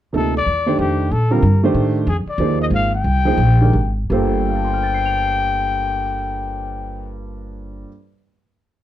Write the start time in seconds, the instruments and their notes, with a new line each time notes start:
0.13 upright bass D2, grand piano C3 F3 A#3 D#4 A4
0.17 trumpet A4
0.37 trumpet D5
0.46 upright bass E2
0.66 grand piano D#3 A3 D4 G4 C5
0.79 upright bass F2, trumpet G4
1.11 upright bass A#2, trumpet A4
1.31 grand piano D3 G3 C4 F4 A#4, trumpet A#4
1.42 upright bass G2
1.63 grand piano D#3 A3 D4 G4 C5
1.74 upright bass A2
2.07 upright bass F2, trumpet G#4
2.26 trumpet D5, muted upright bass stroke
2.38 upright bass D#2, grand piano F3 A#3 D#4 G#4 C5
2.62 trumpet D#5
2.70 upright bass G#1
2.75 trumpet F5
2.95 trumpet G5
3.04 upright bass C2
3.25 grand piano F3 A#3 D#4 G#4 C5
3.37 upright bass A#1
3.61 grand piano D#3 G#3 D4 G4 A#4
3.73 upright bass G#1
4.10 upright bass G1, grand piano G2 G3 A#3 F4 A4 C5
4.14 trumpet G5
4.49 grand piano F5
4.56 grand piano A5
4.65 grand piano C6
4.73 grand piano F6
4.83 grand piano A6
4.94 grand piano C7
5.06 grand piano F7